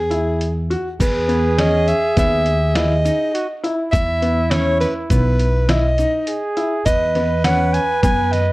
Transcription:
0.00 0.74 E2 medium
0.00 0.67 G#4 medium
0.11 0.42 E4 medium
0.11 closed hi-hat medium
0.41 closed hi-hat medium
0.70 0.86 F#4 medium
0.70 closed hi-hat soft
1.00 1.91 E2 medium
1.00 3.31 G#4 loud
1.00 1.60 B4 medium
1.00 kick loud
1.00 closed hi-hat medium
1.00 crash medium
1.00 shaker medium
1.28 1.44 B3 medium
1.28 closed hi-hat medium
1.58 1.89 C#4 medium
1.58 1.90 D#5 loud
1.58 snare loud
1.58 closed hi-hat medium
1.88 2.17 E5 medium
1.88 closed hi-hat medium
1.88 shaker soft
2.17 3.08 D#2 medium
2.17 2.48 B3 medium
2.17 2.78 E5 loud
2.17 kick loud
2.17 snare soft
2.17 closed hi-hat medium
2.17 shaker medium
2.46 closed hi-hat medium
2.75 2.92 E4 medium
2.75 3.64 D#5 medium
2.75 snare loud
2.75 closed hi-hat medium
3.05 3.37 D#4 medium
3.05 closed hi-hat medium
3.05 shaker soft
3.34 3.47 F#4 medium
3.34 closed hi-hat medium
3.64 3.79 E4 medium
3.64 5.97 E4 medium
3.64 closed hi-hat medium
3.92 4.84 E2 medium
3.92 4.52 E5 loud
3.92 kick loud
3.92 closed hi-hat medium
3.92 shaker medium
4.22 4.38 B3 medium
4.22 closed hi-hat medium
4.51 4.84 C#4 medium
4.51 4.80 C#5 medium
4.51 snare loud
4.51 closed hi-hat medium
4.80 4.94 B4 medium
4.80 snare soft
4.80 closed hi-hat medium
4.80 shaker soft
5.10 6.01 B1 medium
5.10 5.42 B3 medium
5.10 5.72 B4 medium
5.10 kick loud
5.10 closed hi-hat medium
5.10 shaker medium
5.39 closed hi-hat medium
5.68 5.84 E4 medium
5.68 6.58 D#5 medium
5.68 snare loud
5.68 closed hi-hat medium
5.98 6.30 D#4 medium
5.98 closed hi-hat medium
5.98 shaker soft
6.27 6.87 G#4 medium
6.27 closed hi-hat medium
6.57 6.73 E4 medium
6.57 closed hi-hat medium
6.86 7.77 E2 medium
6.86 8.53 B4 loud
6.86 7.41 D#5 loud
6.86 kick loud
6.86 closed hi-hat medium
6.86 shaker medium
7.15 7.32 B3 medium
7.15 snare soft
7.15 closed hi-hat medium
7.45 7.77 C#4 medium
7.45 7.76 F#5 loud
7.45 snare loud
7.45 closed hi-hat medium
7.74 8.04 G#5 loud
7.74 closed hi-hat medium
7.74 shaker soft
8.03 8.53 F#2 medium
8.03 8.35 B3 medium
8.03 8.34 G#5 loud
8.03 kick loud
8.03 closed hi-hat medium
8.03 shaker medium
8.33 8.53 D#5 loud
8.33 snare soft
8.33 closed hi-hat medium

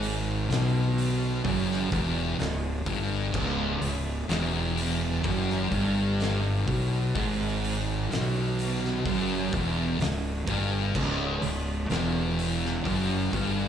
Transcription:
0.00 0.45 G#1 medium
0.00 0.48 G#2 loud
0.00 open hi-hat medium
0.49 1.40 B1 loud
0.49 1.44 B2 loud
0.49 snare loud
0.49 open hi-hat medium
0.98 open hi-hat medium
1.44 1.89 F#1 medium
1.44 1.90 F#2 loud
1.44 kick loud
1.44 open hi-hat medium
1.72 snare soft
1.92 2.36 E1 loud
1.92 2.38 E2 loud
1.92 kick loud
1.92 open hi-hat medium
2.38 2.83 C#1 medium
2.38 2.77 C#2 medium
2.38 snare loud
2.38 open hi-hat medium
2.86 3.31 G1 loud
2.86 3.33 G2 loud
2.86 kick loud
2.86 open hi-hat medium
3.34 3.79 C#1 loud
3.34 3.80 C#2 loud
3.34 kick loud
3.34 crash medium
3.81 4.26 C#1 medium
3.81 4.20 C#2 medium
3.81 open hi-hat medium
4.29 5.20 E1 loud
4.29 5.23 E2 loud
4.29 snare loud
4.29 open hi-hat medium
4.78 open hi-hat medium
5.23 5.69 F#1 loud
5.23 5.70 F#2 loud
5.23 kick loud
5.23 open hi-hat medium
5.50 snare soft
5.70 6.63 G1 loud
5.70 6.65 G2 loud
5.70 kick loud
5.70 open hi-hat medium
6.20 snare loud
6.20 open hi-hat medium
6.66 7.12 B1 medium
6.66 7.13 B2 loud
6.66 kick loud
6.66 open hi-hat medium
7.14 8.06 G#1 medium
7.14 8.09 G#2 loud
7.14 kick loud
7.14 open hi-hat medium
7.64 open hi-hat medium
8.09 9.01 B1 medium
8.09 9.04 B2 loud
8.09 open hi-hat medium
8.13 snare loud
8.59 open hi-hat medium
8.85 snare soft
9.05 9.50 F#1 loud
9.05 9.52 F#2 loud
9.05 kick loud
9.05 open hi-hat medium
9.52 9.97 E1 loud
9.52 10.00 E2 loud
9.52 kick loud
9.52 open hi-hat medium
10.00 10.44 C#1 medium
10.00 10.39 C#2 medium
10.00 snare loud
10.00 open hi-hat medium
10.47 10.92 G1 medium
10.47 10.95 G2 loud
10.47 kick loud
10.47 open hi-hat medium
10.95 11.40 C#1 medium
10.95 11.42 C#2 loud
10.95 kick loud
10.95 crash loud
11.42 11.87 C#1 medium
11.42 11.82 C#2 medium
11.42 open hi-hat medium
11.89 12.82 E1 medium
11.89 12.84 E2 loud
11.89 snare loud
11.89 open hi-hat medium
12.39 open hi-hat medium
12.65 snare soft
12.84 13.30 F#1 medium
12.84 13.32 F#2 loud
12.84 kick loud
12.84 open hi-hat medium
13.33 13.68 G1 loud
13.33 13.68 G2 loud
13.33 kick loud
13.33 open hi-hat medium

